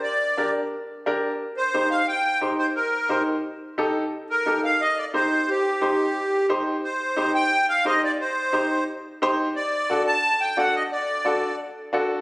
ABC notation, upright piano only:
X:1
M:4/4
L:1/8
Q:1/4=176
K:Cdor
V:1 name="Upright piano"
z2 [DGB] z3 [DGB] z | z2 [EGc] z3 [EGc] z | z2 [EGc] z3 [EGA] z | z2 [EGA] z3 [EGc] z |
z2 [EGc] z3 [EGc] z | z2 [EGc] z3 [EGc] z | z2 [EGc] z3 [EGc] z | z2 [D^FA] z3 [DFA] z |
z2 [D^FA] z3 [DFA] z |]